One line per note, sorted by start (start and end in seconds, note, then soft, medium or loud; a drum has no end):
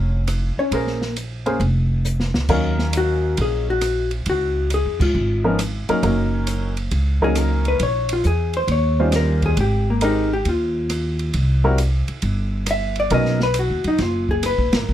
0.00 0.53 F1 medium
0.00 0.19 A#3 medium
0.00 0.20 C#4 medium
0.00 0.20 G#4 medium
0.00 0.20 C#5 medium
0.27 cross-stick medium
0.27 hi-hat pedal medium
0.27 ride medium
0.57 0.73 C#4 medium
0.57 0.73 C#5 medium
0.57 muted upright bass stroke soft
0.71 1.56 A#1 medium
0.71 0.99 A#3 medium
0.71 1.15 A#3 soft
0.71 0.99 C#4 medium
0.71 0.99 G#4 medium
0.71 1.15 A#4 medium
0.71 0.99 C5 medium
0.71 ride medium
0.87 snare soft
1.01 snare soft
1.16 hi-hat pedal soft
1.16 ride medium
1.46 1.59 A#3 medium
1.46 1.59 C#4 medium
1.46 1.59 G#4 medium
1.46 1.60 C5 medium
1.46 ride soft
1.60 2.30 F1 medium
1.60 ride soft
2.05 hi-hat pedal medium
2.20 snare medium
2.34 2.48 C#2 medium
2.34 snare medium
2.49 3.34 D#2 medium
2.49 3.73 F#3 medium
2.49 3.73 C#4 medium
2.49 3.73 D#4 medium
2.49 3.74 A#4 medium
2.49 3.73 F5 medium
2.49 kick medium
2.49 crash medium
2.79 snare soft
2.93 hi-hat pedal medium
2.93 ride medium
2.97 3.37 F#4 medium
3.37 4.22 A#1 medium
3.37 ride medium
3.42 3.69 G#4 medium
3.70 4.10 F#4 medium
3.81 cross-stick medium
3.81 hi-hat pedal medium
3.81 ride medium
4.11 ride soft
4.26 4.81 C#2 medium
4.26 4.69 F#4 medium
4.26 ride medium
4.70 5.01 G#4 medium
4.70 hi-hat pedal medium
4.70 ride medium
4.85 4.99 F2 medium
5.00 5.14 G#2 medium
5.00 5.43 F4 medium
5.00 kick medium
5.00 crash medium
5.15 5.85 G#1 medium
5.44 5.57 F3 medium
5.44 5.58 B3 medium
5.44 5.58 C#4 medium
5.44 5.58 D#4 medium
5.44 5.58 A#4 medium
5.59 cross-stick medium
5.59 hi-hat pedal medium
5.59 ride medium
5.89 6.02 F#3 medium
5.89 6.02 A#3 medium
5.89 6.02 C#4 medium
5.89 6.02 D#4 medium
5.89 6.02 A#4 medium
5.89 muted upright bass stroke soft
5.89 ride soft
6.03 6.88 F#1 medium
6.03 6.71 F#3 medium
6.03 6.71 A#3 medium
6.03 6.72 C#4 medium
6.03 6.71 D#4 medium
6.03 6.72 A#4 medium
6.03 ride medium
6.47 hi-hat pedal medium
6.47 ride medium
6.77 ride medium
6.91 7.76 C#2 medium
6.91 ride medium
7.21 7.78 F#3 medium
7.21 7.78 A#3 medium
7.21 7.78 C#4 medium
7.21 7.78 D#4 medium
7.21 7.39 G#4 medium
7.21 7.78 A#4 medium
7.21 kick soft
7.35 7.66 A#4 medium
7.35 cross-stick medium
7.35 hi-hat pedal medium
7.35 ride medium
7.65 7.81 B4 medium
7.65 ride soft
7.79 8.21 A#1 medium
7.79 8.11 C#5 medium
7.79 ride medium
8.09 ride medium
8.13 8.26 F4 medium
8.23 8.66 E2 medium
8.23 8.55 G#4 medium
8.23 hi-hat pedal medium
8.53 8.70 C5 medium
8.53 ride soft
8.68 9.53 D#2 medium
8.68 ride medium
8.72 9.00 C#5 medium
9.00 9.55 G3 medium
9.00 9.55 C#4 medium
9.00 9.55 D#4 medium
9.00 9.55 F4 medium
9.00 9.55 C5 medium
9.00 9.14 C5 loud
9.12 9.43 A#4 medium
9.12 cross-stick medium
9.12 snare soft
9.12 hi-hat pedal medium
9.12 ride medium
9.42 9.58 G#4 medium
9.42 kick medium
9.42 ride soft
9.57 10.42 G#1 medium
9.57 9.88 G4 medium
9.57 ride medium
9.90 10.03 A#3 soft
10.01 10.29 G#3 medium
10.01 10.28 C4 medium
10.01 10.29 D#4 medium
10.01 10.32 D#4 medium
10.01 10.29 G4 medium
10.01 10.29 A#4 medium
10.01 hi-hat pedal medium
10.01 ride medium
10.33 10.46 G4 medium
10.45 11.30 D#2 medium
10.45 11.32 F4 medium
10.45 ride medium
10.90 cross-stick medium
10.90 hi-hat pedal medium
10.90 ride medium
11.19 ride soft
11.33 12.04 C2 medium
11.33 ride medium
11.64 11.77 G3 medium
11.64 11.77 C4 medium
11.64 11.77 E4 medium
11.64 11.77 F#4 medium
11.64 11.77 A#4 medium
11.78 hi-hat pedal medium
11.78 ride medium
12.08 muted upright bass stroke soft
12.08 ride soft
12.22 13.07 G1 medium
12.22 ride medium
12.66 cross-stick medium
12.66 hi-hat pedal medium
12.66 ride medium
12.71 12.98 E5 medium
12.96 ride soft
13.00 13.12 D5 loud
13.10 13.66 B1 medium
13.10 13.38 F#3 medium
13.10 13.38 B3 medium
13.10 13.38 C#4 medium
13.10 13.38 D#4 medium
13.10 13.38 A#4 medium
13.10 13.42 D#5 medium
13.10 ride medium
13.25 snare soft
13.40 13.56 B4 loud
13.40 snare soft
13.54 hi-hat pedal medium
13.54 ride medium
13.59 13.86 F#4 medium
13.70 13.84 D#2 medium
13.84 13.98 F#2 medium
13.84 14.01 D#4 medium
13.84 ride soft
13.98 14.55 F#1 medium
13.98 14.30 F4 medium
13.98 snare soft
13.98 ride medium
14.29 14.44 G#4 medium
14.29 kick medium
14.43 14.76 B4 medium
14.43 cross-stick medium
14.43 hi-hat pedal medium
14.43 ride medium
14.58 14.72 A#1 medium
14.73 14.87 G#1 medium
14.73 14.94 A#4 loud
14.73 snare medium
14.73 ride medium
14.89 14.94 A#1 medium